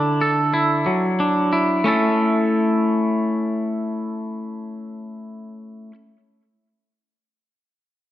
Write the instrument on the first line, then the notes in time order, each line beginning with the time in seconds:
clean electric guitar
Already playing: D3 D4 E4 A4
0.21 A4
0.54 E4
0.86 F#3
1.20 D4
1.53 E4
1.84 A3 C#4 E4 A4